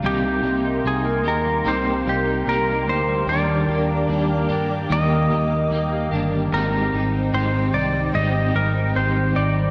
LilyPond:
<<
  \new Staff \with { instrumentName = "Analog synth pad" } { \time 4/4 \key c \minor \tempo 4 = 74 << { c'''1 | d'''1 | r1 | } \\ { <bes' g'' bes''>1~ | <bes' g'' bes''>1 | <c'' g''>1 | } >> }
  \new Staff \with { instrumentName = "Electric slide guitar" } { \time 4/4 \key c \minor g'4 aes'8 bes'8 c''8 g'8 bes'8 c''8 | d''2 ees''4. r8 | bes'4 c''8 d''8 ees''8 bes'8 c''8 d''8 | }
  \new Staff \with { instrumentName = "Clean electric guitar" } { \time 4/4 \key c \minor <c g bes ees' g'>8 <bes ees' g'>8 <bes ees'>8 <bes ees' g'>8 <c g bes ees' g'>8 <bes ees' g'>8 <g bes ees' g'>8 <bes ees' g'>8 | <ees g bes d' g'>8 <bes d' g'>8 <g bes d' g'>8 <bes d' g'>8 <ees g bes g'>8 <bes g'>8 <g bes g'>8 <bes d' g'>8 | <aes c' ees' g'>8 <c' ees' g'>8 <aes c' ees' g'>8 <c' ees' g'>8 <aes c' ees' g'>8 <c' ees' g'>8 <aes c' ees' g'>8 <c' ees' g'>8 | }
  \new Staff \with { instrumentName = "Clean electric guitar" } { \time 4/4 \key c \minor <c ees'>16 bes16 g16 ees'8 bes16 ees'16 g16 <c ees'>16 bes16 g16 ees'16 g16 bes16 ees'16 g16 | <ees d'>16 bes16 g16 d'16 g16 bes16 d'16 g16 ees16 bes16 g8 g16 bes16 d'16 g16 | <aes, ees'>16 c'16 g16 ees'16 ees16 c'16 ees'16 g16 <aes, ees'>16 c'16 g16 ees'16 ees16 c'16 ees'16 g16 | }
  \new Staff \with { instrumentName = "Picked electric bass" } { \clef bass \time 4/4 \key c \minor c,8 c,8 c,8 ees,8 c,8 c,8 c,8 d,8 | ees,8 ees,8 ees,8 g,8 ees,8 ees,8 ees,8 g,,8 | aes,,8 aes,,8 aes,,8 c,8 aes,,8 aes,,8 aes,,8 aes,,8 | }
>>